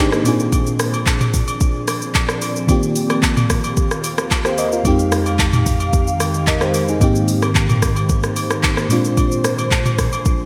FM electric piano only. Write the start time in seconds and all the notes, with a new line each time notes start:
Already playing: G#2 A#3 C4 D#4 G#4 C5
0.00 D4 G4
0.13 A#3 D#4
0.24 A#2 C4 D4 F4
0.28 G#4
2.67 D#3 A#3 C4 F4
2.71 G4
4.46 G4 C5
4.59 A#4 D#5
4.73 F4 A#4
4.84 F2 G#3 C4 D#4
4.88 G4
6.48 A#4 D#5
6.62 G4 C5
6.89 D#4 G#4
7.00 G#2 A#3 C4 D#4
7.04 G4
8.89 A#2 G#3 C4 D4
8.93 F4